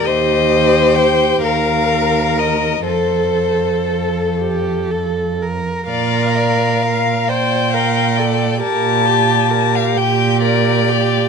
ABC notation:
X:1
M:6/8
L:1/16
Q:3/8=43
K:Bb
V:1 name="Violin"
e4 g2 f4 e2 | c6 z6 | d2 f4 g6 | a4- a f g2 d4 |]
V:2 name="Violin"
c6 B6 | A8- A z3 | f2 d2 f2 d2 f2 d2 | B2 G2 B2 G2 B2 G2 |]
V:3 name="Viola"
G6 B6 | A6 G2 A2 B2 | B6 c2 B2 A2 | G12 |]
V:4 name="Cello" clef=bass
E,,6 E,,6 | F,,12 | B,,6 B,,6 | B,,6 B,,6 |]